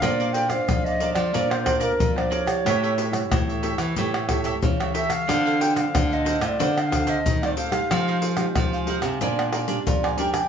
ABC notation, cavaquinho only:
X:1
M:4/4
L:1/16
Q:1/4=92
K:Bb
V:1 name="Cavaquinho"
[Bdfa] [Bdfa] [Bdfa]3 [dfa] [Bdfa] [dfa] [Bdfa]2 [Bdfa] [Bdfa] z [dfa] [Bdfa] [dfa] | [GA^c=e] [GAce] [GAce]3 [Ace] [GAce] [Ace] [GAce]2 [GAce] [GAce] z [Ace] [GAce] [Ace] | [DAcf] [DAcf] [DAcf]3 [Acf] [DAcf] [Acf] [DAcf]2 [DAcf] [DAcf] z [Acf] [DAcf] [Acf] | [E_Acf] [EAcf] [EAcf]3 [Acf] [EAcf] [Acf] [DBd_a]2 [DBda] [DBda] z [Bda] [DBda] [Bda] |]